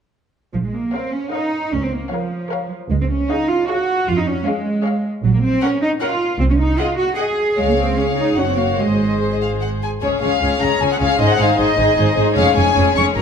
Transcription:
0.54 A#1 F3
0.64 G#3
0.73 A#3
0.94 C4 A#4 C#5 F5
1.13 C#4
1.32 D#4 A#4 C#5 F5
1.72 C#2 C#4
1.83 C4
1.92 A#3
2.11 F3 A#4 C#5 F5
2.51 A#4 C#5 F5
2.90 C#2 G#3
3.01 C4
3.11 C#4
3.29 D#4 G#4 C#5 F5
3.49 F4
3.68 F#4 G#4 C#5 F5
4.07 F2 F4
4.18 D#4
4.28 C#4
4.46 G#3 G#4 C#5 F5
4.84 G#4 C#5 F5
5.23 A#1 F#3
5.34 A#3
5.43 C4
5.61 C#4 A#4 C#5 F#5
5.82 D#4
6.01 F4 A#4 C#5 F#5
6.39 C2 C4
6.50 C#4
6.59 D#4
6.78 F4 G#4 D#5 F#5
6.98 F#4
7.16 G#4 D#5 F#5
7.56 C#2 G#3 G#4 C#5 F5
7.68 A#3
7.78 C4
7.97 C#4 G#4 C#5 F5
8.18 D#4
8.37 F#1 C#4 F#4 C#5 F#5
8.48 C4
8.58 A#3 F5
8.78 G#1 G#3 G#4 C5 D#5
9.20 C5
9.32 D#5
9.42 F5
9.61 F#5
9.83 G#5
10.02 C#2 C#3 G#3 C#4 G#4 C#5
10.22 C#2 C#3 G#3 C#4 G#4 C#5 F5
10.41 C#2 C#3 G#3 C#4 G#4 C#5
10.61 C#2 C#3 G#3 C#4 G#4 C#5 A#5
10.81 C#2 C#3 G#3 C#4 G#4 C#5 G#5
10.92 F#5
11.00 C#2 C#3 G#3 C#4 G#4 C#5 F5
11.19 G#1 G#2 G#3 D#4 G#4 C5 D#5
11.30 F#5
11.38 G#1 G#2 G#3 D#4 G#4 C5 F5
11.58 G#1 G#2 G#3 D#4 G#4 C5 D#5
11.77 G#1 G#2 G#3 D#4 G#4 C5
11.97 G#1 G#2 G#3 D#4 G#4 C5
12.16 G#1 G#2 G#3 D#4 G#4 C5
12.34 F1 F2 G#3 C#4 G#4 C#5 F5
12.54 F1 F2 G#3 C#4 G#4 C#5 G#5
12.74 F1 F2 G#3 C#4 G#4 C#5
12.94 F1 F2 G#3 C#4 G#4 C#5 C#6
13.15 F#1 F#2 F#3 C#4 D#4 A#4 A#5

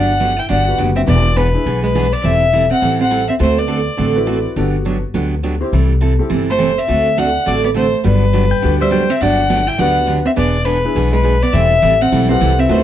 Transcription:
Already playing: G1 D3 F#3 B3 D4 G4 F#5
0.20 D3 F#3 B3 D4 G4
0.37 E4 G5
0.49 G1 D3 F#3 B3 D4 G4 F#5
0.68 D4 F#4 G4 B4
0.78 F#1 D3 F#3 B3 D4 G4
0.96 C4 E5
1.07 E1 E3 B3 D4 G#4 D5
1.36 E3 G#3 B3 D4 G#4 B4
1.54 D4 E4 G#4 B4
1.66 B1 E3 B3 D4 G#4
1.84 G#3 B4
1.95 E3 B3 D4 G#4
2.13 B3 D5
2.22 E1 E3 G3 C4 E4 A4 E5
2.53 E3 G3 C4 E4 A4
2.71 C4 F#5
2.82 A1 E3 G3 C4 E4 A4
3.01 C4 F#5
3.10 E3 G3 C4 E4 A4
3.29 C4 E5
3.39 D2 D3 A3 C4 F#4 A4 C5
3.43 A3
3.58 B3 D5
3.67 D3 A3 C4 F#4 A4
3.97 A1 D3 A3 C4 F#4 A4
4.16 C4 E4 F#4 B4
4.26 D3 A3 C4 F#4 A4
4.56 G1 D3 F#3 B3 D4 F#4 G4 A4
4.85 D3 F#3 B3 D4 G4
5.14 D2 D3 F#3 B3 D4 G4
5.43 D3 F#3 B3 D4 G4
5.61 C4 E4 G4 C5
5.72 C2 C3 E3 G3 C4 E4 A4
6.01 C3 E3 G3 C4 E4 A4
6.19 C4 E4 G4 A4
6.29 G1 C3 E3 G3 C4 E4 A4
6.50 A3 C5
6.58 C3 E3 G3 C4 E4 A4
6.78 C4 E5
6.87 D2 D3 A3 C4 F#4 A4
7.17 D3 A3 C4 D4 F#4 A4 F#5
7.46 A1 D3 A3 C4 F#4 A4 D5
7.64 B3 D5
7.74 D3 A3 C4 F#4 A4 C5
8.04 G1 D3 F#3 G3 B3 D4 G4 B4
8.33 D3 F#3 B3 D4 G4
8.51 G5
8.62 D2 D3 F#3 B3 D4 F#4 G4
8.80 G3 C5 E5
8.90 D3 F#3 B3 D4 G4 G5
9.10 C4 E5
9.20 G1 D3 F#3 B3 D4 G4 F#5
9.49 D3 F#3 B3 D4 G4
9.67 E4 G5
9.78 D2 D3 F#3 B3 D4 F#4 G4 B4 F#5
10.07 D3 F#3 B3 D4 G4
10.26 C4 E5
10.36 E1 E3 B3 D4 G#4 D5
10.65 E3 G#3 B3 D4 G#4 B4
10.85 B3 D4 E4 G#4 B4
10.95 B1 E3 B3 D4 G#4
11.13 G#3 B4
11.23 E3 B3 D4 G#4
11.43 B3 D5
11.53 E1 E3 G3 C4 E4 A4 E5
11.82 A1 E3 G3 C4 E4 A4
12.01 C4 F#5
12.12 B1 E3 G3 C4 E4 A4
12.29 C4 E4 G4 A4 B4 F#5
12.41 C2 E3 G3 C4 E4 A4
12.59 C4 E5
12.69 D2 D3 A3 C4 C#4 D#4 F4 F#4 A4 A#4 B4 C5

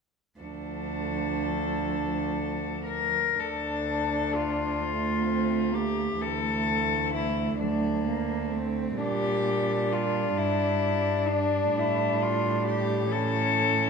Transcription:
0.39 D2 F3 D4 A4
2.85 A#4
3.36 D2 D4 A4
4.36 F4
4.79 A3
5.24 C4
5.72 A#3 G4
6.17 D2 E3 A3
6.22 A4
7.13 E4
7.59 D2 F#3 A3 D4
8.06 A#3
8.51 A3 C4
8.97 A#2 G3 D4 G4
9.93 F4
10.37 G2 E4
11.29 D4
11.75 A2 E4
12.22 F4
12.67 G4
13.11 E3 C#4 A4

